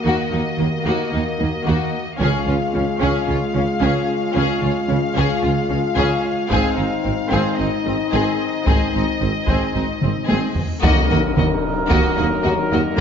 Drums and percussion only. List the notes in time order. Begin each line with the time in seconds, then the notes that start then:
2.20 taiko
6.51 taiko
8.67 taiko
9.48 taiko
10.02 taiko mid
10.29 taiko high
10.55 taiko low
10.83 taiko, tam-tam
11.37 taiko mid
11.90 taiko